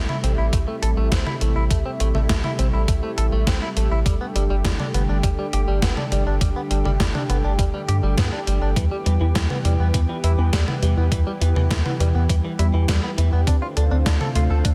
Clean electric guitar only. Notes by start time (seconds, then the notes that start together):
0.09 E4
0.24 C4
0.38 E4
0.53 A3
0.68 A3
0.82 A4
0.97 A3
1.12 C4
1.27 E4
1.41 A3
1.56 E4
1.71 A3
1.86 C4
2.00 A3
2.15 A3
2.30 A3
2.44 E4
2.59 C4
2.73 E4
2.88 A3
3.03 A3
3.18 A4
3.32 A3
3.47 C4
3.62 E4
3.77 A3
3.92 E4
4.06 G3
4.21 B3
4.36 G3
4.50 G3
4.65 G3
4.80 D4
4.94 B3
5.09 D4
5.24 G3
5.39 G3
5.53 G4
5.68 G3
5.83 B3
5.97 D4
6.12 G3
6.27 D4
6.41 G3
6.56 B3
6.71 G3
6.85 G3
7.00 G3
7.15 D4
7.30 B3
7.44 D4
7.59 G3
7.74 G3
7.88 G4
8.03 G3
8.18 B3
8.32 D4
8.47 G3
8.62 D4
8.77 E3
8.91 G3
9.06 E3
9.21 E3
9.36 E3
9.50 B3
9.65 G3
9.80 B3
9.95 E3
10.09 E3
10.24 E4
10.39 E3
10.53 G3
10.68 B3
10.83 E3
10.98 B3
11.12 E3
11.27 G3
11.42 E3
11.56 E3
11.71 E3
11.86 B3
12.00 G3
12.15 B3
12.30 E3
12.45 E3
12.59 E4
12.74 E3
12.89 G3
13.03 B3
13.18 E3
13.33 B3
13.47 D4
13.62 F4
13.77 D4
13.91 D4
14.06 D4
14.21 A4
14.36 F4
14.50 A4
14.65 D4